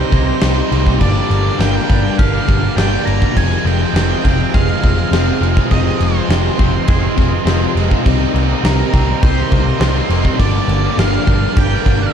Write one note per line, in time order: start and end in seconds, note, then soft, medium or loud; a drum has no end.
0.00 0.39 C3 medium
0.00 0.10 G3 medium
0.00 0.39 G3 medium
0.00 0.10 A#3 medium
0.00 0.10 C4 medium
0.00 0.38 C4 medium
0.00 0.12 D#4 medium
0.00 0.40 D#4 medium
0.00 0.98 D#4 medium
0.00 0.99 G4 medium
0.00 0.98 C5 medium
0.00 1.00 C5 loud
0.00 3.32 G5 medium
0.00 0.98 A#5 loud
0.10 0.31 C2 medium
0.10 0.39 C3 medium
0.10 0.27 G3 medium
0.10 0.70 A#3 medium
0.10 0.27 C4 medium
0.10 0.25 D#4 medium
0.10 kick medium
0.10 crash medium
0.25 0.40 G3 medium
0.25 0.41 C4 medium
0.25 0.41 D#4 medium
0.25 muted overdriven electric guitar stroke medium
0.41 0.60 C2 medium
0.41 0.70 C3 medium
0.41 0.70 G3 medium
0.41 0.72 C4 loud
0.41 1.00 D#4 medium
0.41 0.72 D#4 loud
0.41 snare loud
0.41 crash medium
0.54 0.68 G3 medium
0.54 0.69 C4 medium
0.54 0.70 D#4 medium
0.71 1.03 C2 medium
0.71 0.98 C3 medium
0.71 0.87 G3 medium
0.71 1.00 A#3 medium
0.71 0.86 C4 medium
0.71 0.85 D#4 medium
0.71 crash medium
0.86 1.00 G3 medium
0.86 0.99 C4 medium
0.86 0.98 D#4 medium
0.86 kick medium
1.01 1.19 G1 medium
1.01 1.44 G2 medium
1.01 1.45 D3 medium
1.01 1.59 F3 medium
1.01 1.17 G3 loud
1.01 1.16 A#3 loud
1.01 3.33 D4 medium
1.01 1.14 D4 loud
1.01 3.34 A#4 medium
1.01 1.61 D5 loud
1.01 8.02 F5 medium
1.01 kick loud
1.01 crash medium
1.15 1.46 G3 medium
1.15 1.45 A#3 medium
1.15 1.43 D4 medium
1.30 1.49 G1 medium
1.30 2.46 A#3 medium
1.30 crash medium
1.45 1.59 G3 medium
1.45 1.59 A#3 medium
1.45 1.60 D4 medium
1.59 1.78 G1 medium
1.59 2.18 G2 loud
1.59 1.88 D3 medium
1.59 3.34 F3 medium
1.59 1.89 G3 loud
1.59 1.89 A#3 loud
1.59 1.90 D4 loud
1.59 2.18 G5 loud
1.59 snare loud
1.59 crash medium
1.89 2.07 G1 medium
1.89 2.74 G2 medium
1.89 2.33 D3 medium
1.89 2.06 G3 medium
1.89 2.05 A#3 medium
1.89 2.75 D4 medium
1.89 2.03 D4 medium
1.89 kick medium
1.89 crash medium
2.03 2.34 A#3 medium
2.03 2.33 D4 medium
2.03 muted overdriven electric guitar stroke medium
2.07 2.36 G3 medium
2.18 2.37 G1 medium
2.18 3.36 G4 medium
2.18 2.76 F5 loud
2.18 kick loud
2.18 crash medium
2.34 2.48 G3 medium
2.34 2.49 A#3 medium
2.34 2.49 D4 medium
2.47 2.67 G1 medium
2.47 2.76 D3 medium
2.47 2.64 G3 medium
2.47 3.05 A#3 medium
2.47 2.63 A#3 medium
2.47 2.61 D4 loud
2.47 kick medium
2.47 crash medium
2.62 2.76 G3 medium
2.62 2.77 A#3 medium
2.62 2.77 D4 medium
2.62 muted overdriven electric guitar stroke soft
2.76 2.95 G1 loud
2.76 3.33 G2 loud
2.76 3.05 D3 loud
2.76 3.06 G3 loud
2.76 3.07 A#3 loud
2.76 3.35 D4 medium
2.76 3.08 D4 loud
2.76 3.07 G5 loud
2.76 snare loud
2.76 crash medium
2.91 3.05 G3 medium
2.91 3.05 A#3 medium
2.91 3.06 D4 medium
3.05 3.25 G1 medium
3.05 3.34 D3 medium
3.05 3.22 G3 medium
3.05 3.35 A#3 medium
3.05 3.21 A#3 medium
3.05 3.19 D4 medium
3.05 3.36 A#5 loud
3.05 crash medium
3.21 3.35 G3 medium
3.21 3.34 A#3 medium
3.21 3.33 D4 medium
3.21 kick medium
3.34 3.55 F1 loud
3.34 3.94 F2 medium
3.34 3.79 C3 loud
3.34 3.92 D#3 medium
3.34 3.52 F3 loud
3.34 3.51 G#3 loud
3.34 10.36 C4 loud
3.34 3.49 C4 loud
3.34 8.02 G#4 medium
3.34 10.36 D#5 medium
3.34 3.66 G#5 loud
3.34 kick loud
3.34 crash medium
3.50 3.82 F3 medium
3.50 3.81 G#3 medium
3.50 3.79 C4 medium
3.64 3.83 F1 medium
3.64 4.82 G#3 medium
3.64 4.56 G5 loud
3.64 crash medium
3.80 3.95 F3 medium
3.80 3.96 G#3 medium
3.80 3.96 C4 medium
3.94 4.12 F1 loud
3.94 5.12 F2 medium
3.94 4.22 C3 medium
3.94 5.41 D#3 medium
3.94 4.24 F3 loud
3.94 4.25 G#3 loud
3.94 4.25 C4 loud
3.94 snare loud
3.94 crash medium
4.23 4.43 F1 loud
4.23 5.10 F2 medium
4.23 4.67 C3 medium
4.23 4.39 F3 medium
4.23 4.39 G#3 medium
4.23 5.12 C4 medium
4.23 4.38 C4 medium
4.23 kick medium
4.23 crash medium
4.38 4.69 F3 medium
4.38 4.68 G#3 medium
4.38 4.67 C4 medium
4.38 muted overdriven electric guitar stroke medium
4.54 4.72 F1 medium
4.54 6.00 G#4 medium
4.54 5.71 F5 loud
4.54 kick loud
4.54 crash medium
4.68 4.82 F3 medium
4.68 4.83 G#3 medium
4.68 4.85 C4 medium
4.82 5.01 F1 medium
4.82 5.12 C3 medium
4.82 4.99 F3 medium
4.82 5.41 G#3 medium
4.82 4.98 G#3 loud
4.82 4.97 C4 medium
4.82 kick medium
4.82 crash medium
4.98 5.13 F3 medium
4.98 5.13 G#3 medium
4.98 5.15 C4 medium
4.98 muted overdriven electric guitar stroke medium
5.11 5.30 F1 medium
5.11 5.69 F2 loud
5.11 5.40 C3 medium
5.11 5.41 F3 loud
5.11 5.42 G#3 loud
5.11 6.59 C4 medium
5.11 snare loud
5.11 crash medium
5.15 5.43 C4 loud
5.26 5.41 F3 medium
5.26 5.41 G#3 medium
5.26 5.43 C4 medium
5.41 5.60 F1 medium
5.41 5.69 C3 medium
5.41 5.57 F3 medium
5.41 6.00 G#3 medium
5.41 5.56 G#3 medium
5.41 5.56 C4 medium
5.41 crash medium
5.56 5.70 F3 medium
5.56 5.70 G#3 medium
5.56 5.72 C4 medium
5.56 kick medium
5.70 5.89 F1 loud
5.70 6.14 F2 loud
5.70 6.14 C3 loud
5.70 6.28 D#3 medium
5.70 5.85 F3 loud
5.70 5.84 G#3 loud
5.70 5.83 C4 loud
5.70 6.01 D#5 loud
5.70 kick medium
5.70 crash medium
5.84 6.15 F3 medium
5.84 6.14 G#3 medium
5.84 6.14 C4 medium
6.00 6.19 F1 medium
6.00 7.17 G#3 medium
6.00 7.73 C5 medium
6.00 crash medium
6.14 6.29 F3 medium
6.14 6.29 G#3 medium
6.14 6.31 C4 medium
6.29 6.48 F1 loud
6.29 6.88 F2 medium
6.29 6.57 C3 loud
6.29 7.76 D#3 medium
6.29 6.58 F3 loud
6.29 6.59 G#3 loud
6.29 6.60 C4 loud
6.29 snare loud
6.29 crash medium
6.58 6.77 F1 loud
6.58 7.44 F2 medium
6.58 7.02 C3 medium
6.58 6.75 F3 medium
6.58 6.73 G#3 medium
6.58 7.45 C4 medium
6.58 6.72 C4 medium
6.58 kick medium
6.58 crash medium
6.73 7.03 F3 medium
6.73 7.02 G#3 medium
6.73 7.01 C4 medium
6.73 muted overdriven electric guitar stroke medium
6.88 7.07 F1 loud
6.88 8.05 G#4 medium
6.88 kick loud
6.88 crash medium
7.02 7.16 F3 medium
7.02 7.16 G#3 medium
7.02 7.17 C4 medium
7.16 7.36 F1 medium
7.16 7.44 C3 medium
7.16 7.32 F3 medium
7.16 7.31 G#3 medium
7.16 7.75 G#3 medium
7.16 7.29 C4 medium
7.16 kick medium
7.16 crash medium
7.30 7.45 F3 medium
7.30 7.45 G#3 medium
7.30 7.45 C4 medium
7.30 muted overdriven electric guitar stroke soft
7.44 7.64 F1 medium
7.44 8.02 F2 medium
7.44 7.73 C3 loud
7.44 7.74 F3 medium
7.44 7.74 G#3 loud
7.44 7.75 C4 loud
7.44 8.05 C4 medium
7.44 snare loud
7.44 crash medium
7.61 7.75 F3 medium
7.61 7.76 G#3 medium
7.61 7.77 C4 medium
7.74 7.94 F1 medium
7.74 8.02 C3 medium
7.74 7.91 F3 medium
7.74 7.90 G#3 medium
7.74 8.05 G#3 medium
7.74 7.88 C4 medium
7.74 crash medium
7.89 8.04 F3 medium
7.89 8.03 G#3 medium
7.89 8.03 C4 medium
7.89 kick medium
8.04 8.24 C2 loud
8.04 8.48 C3 medium
8.04 8.62 D#3 medium
8.04 8.21 G3 medium
8.04 8.19 C4 loud
8.04 8.17 D#4 loud
8.04 10.37 A#4 medium
8.04 12.13 G5 loud
8.04 kick loud
8.04 crash medium
8.18 8.50 G3 medium
8.18 8.48 C4 medium
8.18 8.46 D#4 medium
8.34 8.53 C2 medium
8.34 9.49 A#3 medium
8.34 crash medium
8.47 8.63 G3 medium
8.47 8.63 C4 medium
8.47 8.63 D#4 medium
8.62 8.82 C2 loud
8.62 8.91 C3 loud
8.62 10.10 D#3 medium
8.62 8.92 G3 loud
8.62 8.92 C4 medium
8.62 8.93 D#4 loud
8.62 9.23 A#4 medium
8.62 snare loud
8.62 crash medium
8.92 9.12 C2 medium
8.92 9.36 C3 medium
8.92 9.08 G3 medium
8.92 9.79 C4 medium
8.92 9.06 C4 medium
8.92 9.05 D#4 medium
8.92 kick medium
8.92 crash medium
9.07 9.37 G3 medium
9.07 9.36 C4 medium
9.07 9.34 D#4 medium
9.07 muted overdriven electric guitar stroke medium
9.21 9.41 C2 loud
9.21 10.39 G4 medium
9.21 10.44 C5 medium
9.21 kick loud
9.21 crash medium
9.35 9.49 G3 medium
9.35 9.49 C4 medium
9.35 9.50 D#4 medium
9.49 9.70 C2 medium
9.49 9.77 C3 medium
9.49 9.65 G3 medium
9.49 10.08 A#3 medium
9.49 9.64 C4 medium
9.49 9.63 D#4 loud
9.49 kick loud
9.49 crash medium
9.64 9.78 G3 medium
9.64 9.79 C4 medium
9.64 9.80 D#4 medium
9.64 muted overdriven electric guitar stroke soft
9.78 9.99 C2 medium
9.78 10.06 C3 medium
9.78 10.07 G3 loud
9.78 10.39 C4 medium
9.78 10.08 C4 loud
9.78 10.08 D#4 loud
9.78 snare loud
9.78 crash medium
9.94 10.10 G3 medium
9.94 10.12 C4 medium
9.94 10.12 D#4 medium
10.07 10.28 F1 medium
10.07 10.36 C3 medium
10.07 10.24 G3 medium
10.07 10.39 A#3 medium
10.07 10.23 C4 medium
10.07 10.21 D#4 medium
10.07 crash medium
10.23 10.37 G3 medium
10.23 10.37 C4 medium
10.23 10.37 D#4 medium
10.23 kick medium
10.36 10.58 G1 medium
10.36 10.82 G2 loud
10.36 10.82 D3 loud
10.36 10.96 F3 medium
10.36 10.53 G3 loud
10.36 10.52 A#3 loud
10.36 10.51 D4 loud
10.36 12.13 D4 loud
10.36 10.99 D5 loud
10.36 kick medium
10.36 crash medium
10.40 10.84 A#3 loud
10.40 12.13 A#4 medium
10.40 12.13 F5 medium
10.52 10.83 G3 medium
10.52 10.83 A#3 medium
10.52 10.81 D4 medium
10.68 10.87 G1 loud
10.68 11.84 A#3 medium
10.68 crash medium
10.82 10.97 G3 medium
10.82 10.98 A#3 medium
10.82 10.98 D4 medium
10.97 11.16 G1 loud
10.97 11.56 G2 medium
10.97 11.25 D3 loud
10.97 12.13 F3 medium
10.97 11.26 G3 loud
10.97 11.27 A#3 loud
10.97 11.27 D4 loud
10.97 11.59 F5 loud
10.97 snare loud
10.97 crash medium
11.26 11.46 G1 loud
11.26 12.11 G2 medium
11.26 11.71 D3 medium
11.26 11.41 G3 medium
11.26 11.40 A#3 medium
11.26 12.13 D4 medium
11.26 11.39 D4 medium
11.26 kick medium
11.26 crash medium
11.40 11.70 G3 medium
11.40 11.69 A#3 medium
11.40 11.68 D4 medium
11.40 muted overdriven electric guitar stroke soft
11.57 11.76 G1 medium
11.57 12.13 G4 medium
11.57 12.12 G5 loud
11.57 kick loud
11.57 crash medium
11.69 11.84 G3 medium
11.69 11.85 A#3 medium
11.69 11.86 D4 medium
11.85 12.05 G1 medium
11.85 12.13 D3 medium
11.85 12.01 G3 medium
11.85 12.13 A#3 medium
11.85 12.00 A#3 medium
11.85 11.98 D4 medium
11.85 kick medium
11.85 crash medium
11.99 12.13 G3 medium
11.99 12.13 A#3 medium
11.99 12.13 D4 medium
11.99 muted overdriven electric guitar stroke medium